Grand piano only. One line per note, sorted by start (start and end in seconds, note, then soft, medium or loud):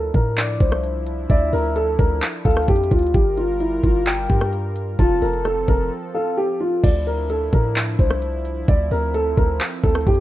0.00 0.12 A4 medium
0.15 0.36 A#4 medium
0.61 1.26 C5 medium
1.30 1.51 D5 medium
1.53 1.74 A#4 medium
1.76 1.97 A4 medium
1.99 2.20 A#4 medium
2.45 2.66 A4 medium
2.69 2.90 G4 medium
2.91 3.12 F4 medium
3.14 3.35 G4 medium
3.37 3.59 F4 medium
3.60 3.82 E4 medium
3.84 4.05 F4 medium
4.29 4.95 G4 medium
4.99 5.20 F4 loud
5.22 5.43 A#4 medium
5.45 5.66 A4 medium
5.68 5.90 A#4 medium
6.15 6.36 A4 medium
6.37 6.59 G4 medium
6.60 6.82 F4 medium
6.83 7.05 D5 medium
7.07 7.28 A#4 medium
7.30 7.51 A4 medium
7.53 7.74 A#4 medium
7.99 8.64 C5 medium
8.69 8.90 D5 medium
8.92 9.13 A#4 medium
9.14 9.36 A4 loud
9.37 9.59 A#4 medium
9.83 10.05 A4 medium
10.07 10.20 G4 medium